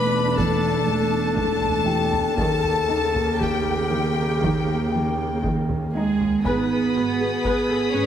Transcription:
Already playing: E1 E2 A3 D4 G4 A4 B4 D5 G5 A5 B5 D6
0.37 E2 A4 A5, taiko
0.87 E2
1.36 E2 A4 A5, taiko
1.62 taiko low
1.86 E3 G4 G5
2.12 taiko low
2.37 D#2 C#3 D#3 A#3 A4 A5, taiko
2.63 taiko low
2.90 D#4
3.15 taiko low
3.40 D#3 G4 G5, taiko
3.92 D#3
4.43 D#3, taiko
4.92 D#3 G5
5.44 D#3, taiko
5.69 taiko low
5.95 G#3 D#4 G#4
6.20 taiko low
6.45 G#1 G#2 B3 D#4 G#4 B4 G#5 B5 D#6, taiko
6.95 G#1 G#2 F#4 G#4 B4
7.20 G#1 G#4
7.44 G#1 G#3 G#4 B4, taiko
7.70 G#1 G#4 A4
7.94 G#1 G#2 C#4 G#4 B4 C#5

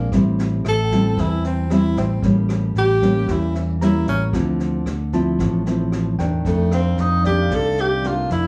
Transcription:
Already playing: A#3 G#5
0.12 A1 A2 G3 C4 E4, kick, cross-stick, snare
0.39 snare
0.65 A1 A4 E5, cross-stick, snare
0.84 G5
0.91 G3 C4 E4, kick, snare
1.02 A5
1.17 E2 E3 E4, kick, snare
1.44 C4, snare
1.70 G3 C4 E4, cross-stick, snare
1.96 A1 C4, kick, snare
2.23 A1 A2 G3 A#3 C#4, kick, snare
2.49 cross-stick, snare
2.75 A1 G4, snare
3.02 G3 A#3 C#4, kick, snare
3.28 E2 E3, kick, cross-stick, snare
3.32 E4
3.55 C#4, snare
3.81 G3 A#3 C#4 E4 A#5, snare
4.07 A1 C#4, kick, snare
4.33 D2 D3 F3 C4 E4, kick, cross-stick, snare
4.60 snare
4.86 D2, cross-stick, snare
5.13 F3 C4 E4 A5, kick, snare
5.39 A1 A2, kick, snare
5.66 F3 C4 E4, snare
5.92 cross-stick, snare
6.18 E2 D#3 A3 D4 G5, kick, snare
6.45 F2 A3, kick, snare
6.71 C4 F5, cross-stick, snare
6.98 F2 D#4, snare
7.24 D#3 A3 D4 G4 D5, kick, snare
7.42 F5
7.50 C2 C3, kick, cross-stick, snare
7.55 A4
7.78 G4, snare
8.04 D#3 A3 D4 F4, snare
8.30 F2 E4, kick, snare

